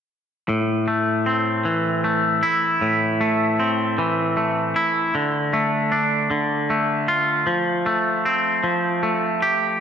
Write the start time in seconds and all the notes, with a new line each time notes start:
0.49 A2
0.88 A3
1.26 C4
1.65 E3
2.04 A3
2.43 E4
2.81 A2
3.21 A3
3.60 C4
3.98 E3
4.37 A3
4.76 E4
5.15 D3
5.53 A3
5.92 D4
6.31 D3
6.70 A3
7.08 F4
7.47 F3
7.86 A3
8.25 C4
8.64 F3
9.03 A3
9.42 G4